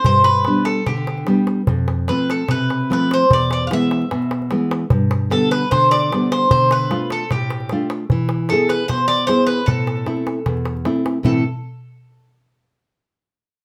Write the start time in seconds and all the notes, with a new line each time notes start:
0.05 G2 C5, darbuka dum
0.24 B4, darbuka tek
0.45 G3 B3 D4, darbuka tek
0.65 A4, darbuka tek
0.86 D3 G4, darbuka tek, darbuka dum
0.97 darbuka tek
1.07 darbuka tek
1.18 darbuka tek
1.27 G3 B3 D4, darbuka tek
1.47 darbuka tek
1.67 F2, darbuka dum
1.88 darbuka tek
2.08 F3 A3 C4 B4, darbuka tek
2.30 A4, darbuka tek
2.48 C3 B4, darbuka tek, darbuka dum
2.60 darbuka tek
2.70 darbuka tek
2.81 darbuka tek
2.90 F3 A3 C4 B4, darbuka tek
3.11 C5, darbuka tek
3.31 E2 D5, darbuka dum
3.51 D5, darbuka tek
3.62 darbuka tek
3.67 E3 F5, darbuka tek
3.71 G#3 B3 E5
3.82 darbuka tek
3.91 darbuka tek
4.02 darbuka tek
4.11 B2, darbuka tek
4.22 darbuka tek
4.31 darbuka tek
4.42 darbuka tek
4.51 E3 G#3 B3, darbuka tek
4.71 darbuka tek
4.90 G2, darbuka dum
5.11 darbuka tek
5.30 D3 G3 B3 A4, darbuka tek
5.51 B4, darbuka tek
5.71 D3 C5, darbuka tek, darbuka dum
5.82 darbuka tek
5.91 D5, darbuka tek
6.03 darbuka tek
6.12 D3 G3 B3, darbuka tek
6.32 C5, darbuka tek
6.51 D3 C5, darbuka dum
6.71 B4, darbuka tek
6.90 A3 D4 F4, darbuka tek
7.10 A4, darbuka tek
7.31 A2 G4, darbuka tek, darbuka dum
7.40 darbuka tek
7.50 darbuka tek
7.60 darbuka tek
7.69 A3 D4 F4, darbuka tek
7.90 darbuka tek
8.10 E3, darbuka dum
8.29 darbuka tek
8.49 B3 E4 G#4 A4, darbuka tek
8.69 B4, darbuka tek
8.88 B2 C5, darbuka tek, darbuka dum
8.98 darbuka tek
9.08 D5, darbuka tek
9.19 darbuka tek
9.27 B3 E4 G#4 C5, darbuka tek
9.47 B4, darbuka tek
9.66 A2 A4, darbuka dum
9.87 darbuka tek
9.97 darbuka tek
10.06 A3 C4 E4, darbuka tek
10.17 darbuka tek
10.27 darbuka tek
10.46 E2, darbuka tek, darbuka dum
10.57 darbuka tek
10.65 darbuka tek
10.77 darbuka tek
10.85 A3 C4 E4, darbuka tek
10.96 darbuka tek
11.06 darbuka tek
11.23 A2 E3 A3 C4 E4 A4, darbuka dum